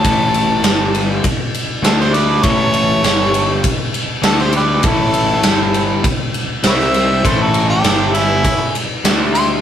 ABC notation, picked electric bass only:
X:1
M:4/4
L:1/8
Q:1/4=100
K:Glyd
V:1 name="Picked electric bass" clef=bass
A,,,2 G,,,2 z2 D,,2 | A,,,2 G,,,2 z2 D,,2 | A,,,2 G,,,2 z2 =C,,2 | A,,,2 G,,,2 z2 D,,2 |]